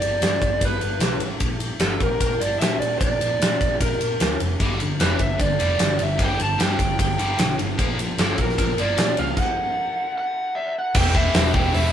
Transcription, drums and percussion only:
0.02 ride
0.22 snare, ride
0.42 kick, ride
0.61 kick, ride
0.81 ride
1.00 snare, ride
1.20 ride
1.40 kick, ride
1.60 ride
1.80 snare, ride
2.00 kick, ride
2.21 kick, ride
2.41 ride
2.61 snare, ride
2.82 ride
3.01 kick, ride
3.21 ride
3.42 snare, ride
3.61 kick, snare, ride
3.81 kick, ride
4.01 ride
4.20 snare, ride
4.40 ride
4.60 kick, ride
4.80 ride
5.00 snare, ride
5.19 kick, ride
5.40 kick, ride
5.60 ride
5.79 snare, ride
5.99 ride
6.19 kick, ride
6.40 ride
6.60 snare, ride
6.79 kick, snare, ride
6.99 kick, ride
7.19 ride
7.39 snare, ride
7.59 ride
7.79 kick, ride
7.99 ride
8.18 snare, ride
8.38 kick, ride
8.49 snare
8.58 kick, ride
8.78 ride
8.98 snare, ride
9.17 ride
9.37 kick, crash
10.94 kick, crash
11.15 kick
11.34 snare, open hi-hat
11.54 kick
11.74 open hi-hat

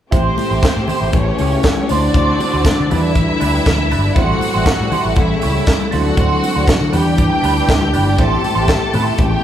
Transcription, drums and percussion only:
0.12 kick, closed hi-hat
0.38 open hi-hat, muted conga
0.63 kick, snare, clap, closed hi-hat, high conga
0.88 open hi-hat, low conga
1.13 kick, closed hi-hat, muted conga
1.38 open hi-hat, muted conga
1.63 kick, snare, clap, closed hi-hat, high conga
1.77 high conga
1.89 open hi-hat
2.14 kick, closed hi-hat
2.40 open hi-hat, muted conga
2.65 kick, snare, clap, closed hi-hat, high conga
2.91 open hi-hat, low conga
3.15 kick, closed hi-hat, muted conga
3.41 open hi-hat, muted conga
3.66 kick, snare, clap, closed hi-hat, high conga
3.78 high conga
3.91 open hi-hat
4.16 kick, closed hi-hat
4.41 open hi-hat, muted conga
4.66 kick, snare, clap, closed hi-hat, high conga
4.92 open hi-hat, low conga
5.16 kick, closed hi-hat, muted conga
5.42 open hi-hat, muted conga
5.67 kick, snare, clap, closed hi-hat, high conga
5.81 high conga
5.92 open hi-hat
6.17 kick, closed hi-hat
6.44 open hi-hat, muted conga
6.67 kick, snare, clap, closed hi-hat, high conga
6.93 open hi-hat, low conga
7.18 kick, closed hi-hat, muted conga
7.44 open hi-hat, muted conga
7.68 kick, snare, clap, closed hi-hat, high conga
7.81 high conga
7.94 open hi-hat
8.07 high conga
8.19 kick, closed hi-hat
8.44 open hi-hat, muted conga
8.68 kick, snare, clap, closed hi-hat, high conga
8.94 open hi-hat, low conga
9.18 kick, closed hi-hat, muted conga

